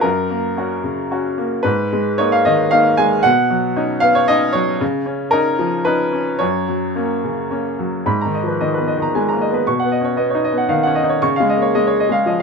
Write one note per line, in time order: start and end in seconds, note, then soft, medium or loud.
0.01 1.61 F#2 soft
0.01 1.10 A#4 medium
0.30 0.74 A#3 soft
0.57 0.82 C#4 soft
0.57 0.82 F#4 soft
0.84 1.27 C#3 soft
1.11 1.36 C#4 soft
1.11 1.36 F#4 soft
1.38 1.65 A#3 soft
1.63 3.20 G#2 soft
1.63 2.18 B4 medium
1.93 2.35 G#3 soft
2.18 2.43 A#3 soft
2.18 2.43 D#4 soft
2.18 2.32 C#5 medium
2.32 2.46 F5 medium
2.45 2.88 D#3 soft
2.45 2.72 D#5 medium
2.71 2.96 A#3 soft
2.71 2.96 D#4 soft
2.71 2.98 F5 medium
2.97 3.25 G#3 soft
2.97 3.24 G#5 medium
3.23 4.77 B2 medium
3.23 4.03 F#5 medium
3.50 3.93 F#3 soft
3.76 4.00 C#4 soft
3.76 4.00 D#4 soft
4.00 4.44 B3 soft
4.00 4.15 F5 medium
4.15 4.29 C#5 medium
4.28 4.53 C#4 soft
4.28 4.53 D#4 soft
4.28 4.54 D#5 medium
4.53 4.80 F#3 soft
4.53 4.80 C#5 medium
4.81 6.37 C#3 medium
5.06 5.31 C#4 soft
5.31 5.56 C#4 soft
5.31 5.57 D#4 soft
5.31 5.85 A#4 medium
5.59 6.02 F3 soft
5.85 6.11 C#4 soft
5.85 6.11 D#4 soft
5.85 6.41 B4 medium
6.13 6.41 C#4 soft
6.39 8.03 F#2 soft
6.39 7.50 C#5 medium
6.68 7.13 F#3 soft
6.96 7.21 A#3 soft
6.96 7.21 C#4 soft
7.24 7.68 C#3 soft
7.51 7.76 A#3 soft
7.51 7.76 C#4 soft
7.79 8.07 F#3 soft
8.06 9.62 G#2 soft
8.06 8.28 B5 soft
8.21 8.42 A#5 soft
8.25 8.54 D#3 soft
8.35 8.56 D#5 soft
8.43 8.61 F3 soft
8.48 8.69 B4 soft
8.61 8.89 D#3 soft
8.61 8.82 D#5 soft
8.74 8.95 B4 soft
8.78 9.06 B3 soft
8.88 9.08 D#5 soft
8.97 9.25 D#3 soft
9.02 9.22 A#5 soft
9.15 9.43 G#3 soft
9.15 9.28 G#5 soft
9.29 9.60 A#3 soft
9.29 9.49 A#5 soft
9.41 9.62 D#5 soft
9.51 9.67 B3 soft
9.51 9.67 B4 soft
9.67 11.20 B2 soft
9.67 9.87 C#6 soft
9.80 10.00 F#5 soft
9.84 10.11 B3 soft
9.92 10.13 D#5 soft
10.01 10.18 C#4 soft
10.01 10.26 C#5 soft
10.17 10.45 B3 soft
10.17 10.38 D#5 soft
10.30 10.52 C#5 soft
10.35 10.63 D#4 soft
10.44 10.65 D#5 soft
10.53 10.81 B3 soft
10.58 10.78 F#5 soft
10.69 10.98 D#3 soft
10.69 10.83 F5 soft
10.83 11.15 C#4 soft
10.83 11.04 F#5 soft
10.95 11.17 D#5 soft
11.04 11.22 D#4 soft
11.09 11.23 C#5 soft
11.22 12.42 C#3 medium
11.22 11.43 C#6 medium
11.36 11.57 F5 soft
11.40 11.68 G#3 soft
11.49 11.70 D#5 soft
11.57 11.75 A#3 soft
11.62 11.83 C#5 soft
11.75 12.03 G#3 soft
11.75 11.96 D#5 soft
11.87 12.08 C#5 soft
12.00 12.22 D#5 soft
12.09 12.38 G#3 soft
12.09 12.34 F5 soft
12.26 12.42 F3 soft
12.26 12.40 D#5 soft